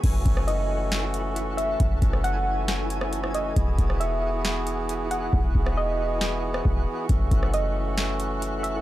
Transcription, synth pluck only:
\new Staff \with { instrumentName = "Synth pluck" } { \time 4/4 \key fis \dorian \tempo 4 = 136 r4 dis''4 r4. e''8 | r4 fis''4 r4. dis''8 | r4 e''4 r4. fis''8 | r4 dis''2. |
r4 dis''4 r4. e''8 | }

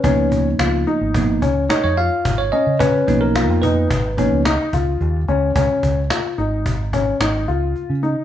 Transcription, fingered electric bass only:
\new Staff \with { instrumentName = "Fingered electric bass" } { \clef bass \time 5/4 \key des \mixolydian \tempo 4 = 109 des,4 des,8 r16 aes,,8. des,8 r16 f,8 r16 aes,,8 r16 des16~ | des8 ces,8. f,8. aes,,8. des,8 r16 des,8 ees,8 des,8 | des,16 r16 des,8 r8 aes,,4. aes,,8 des,8 r16 des8 r16 | }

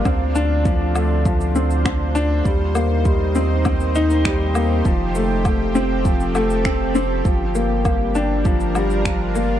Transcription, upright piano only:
\new Staff \with { instrumentName = "Upright piano" } { \time 4/4 \key g \minor \tempo 4 = 100 c'8 d'8 f8 a8 f8 c'8 c'8 d'8 | g8 bes8 g8 c'8 c'8 ees'8 g8 bes8 | f8 a8 a8 c'8 f8 a8 c'8 c'8 | f8 bes8 bes8 d'8 f8 g8 f8 bes8 | }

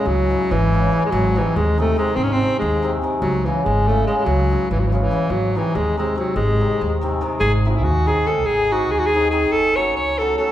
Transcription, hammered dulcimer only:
\new Staff \with { instrumentName = "Hammered dulcimer" } { \clef bass \time 5/8 \tempo 4 = 143 r8 <cis e gis cis'>8 r8 <cis e gis cis'>8 <cis e gis cis'>8 | r8 <bis, dis gis bis>8 r8 <bis, dis gis bis>8 <bis, dis gis bis>8 | r8 <bis, dis gis bis>8 r8 <bis, dis gis bis>8 <bis, dis gis bis>8 | r8 <cis e gis cis'>8 r8 <cis e gis cis'>8 <cis e gis cis'>8 |
r8 <cis e gis cis'>8 r8 <cis e gis cis'>8 <cis e gis cis'>8 | r8 <bis, dis gis bis>8 r8 <bis, dis gis bis>8 <bis, dis gis bis>8 | r8 <bis, dis gis bis>8 r8 <bis, dis gis bis>8 <bis, dis gis bis>8 | r8 <dis gis bis dis' gis'>8 r8 <dis gis bis dis' gis'>8 <dis gis bis dis' gis'>8 |
r8 <dis gis bis dis' gis'>8 r8 <dis gis bis dis' gis'>8 <dis gis bis dis' gis'>8 | r8 <fis a cis' fis' a'>8 r8 <fis a cis' fis' a'>8 <fis a cis' fis' a'>8 | }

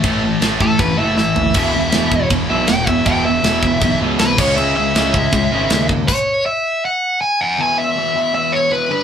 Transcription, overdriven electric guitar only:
\new Staff \with { instrumentName = "Overdriven electric guitar" } { \time 4/4 \key e \major \tempo 4 = 159 r4. a'8 b'8 e''8 e''4~ | e''2 r8 e''8 g''8 e''8 | g''8 e''2 r8 b'8 cis''8 | e''8 e''2. r8 |
cis''4 e''4 fis''4 gis''8 <fis'' gis''>8 | gis''8 e''4. e''8 cis''8 b'8 b'8 | }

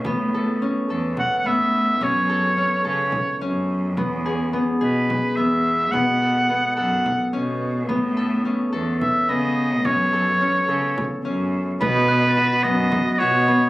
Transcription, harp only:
\new Staff \with { instrumentName = "Harp" } { \time 7/8 \key b \mixolydian \tempo 4 = 107 b8 a'8 cis'8 a'4 b4 | cis'8 a'8 cis'8 a'4 cis'4 | b8 gis'8 b8 gis'4 b4 | b8 a'8 b8 a'4 cis'4 |
b8 a'8 cis'8 a'4 b4 | cis'8 a'8 cis'8 a'4 cis'4 | b4 fis'8 b4 fis'8 b8 | }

